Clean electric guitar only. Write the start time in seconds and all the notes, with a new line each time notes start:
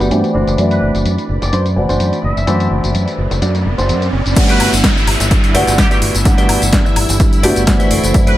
0.00 F#4 G4 B4
0.11 G5
0.35 D4 F#4 C5 D5
1.42 muted clean electric guitar stroke
1.53 D4 F#4 C5
1.76 muted clean electric guitar stroke
1.89 D4 F#4 C5
2.47 D4 F#4 C5
3.31 muted clean electric guitar stroke
3.42 D4 F#4 D5
3.66 muted clean electric guitar stroke
3.78 D4 F#4 C5
4.49 F#4 G4 B4 D5
4.96 muted clean electric guitar stroke
5.07 muted clean electric guitar stroke
5.54 F#4 G4 B4 D5
5.91 F#4 G4 B4 D5
6.38 F#4 G4 B4 D5
6.85 muted clean electric guitar stroke
6.96 muted clean electric guitar stroke
7.43 F#4 G4 B4 D5
7.80 F#4 G4 B4 E5
7.91 F#4 A4 C5 D5
8.27 F#4 A4 C5 D5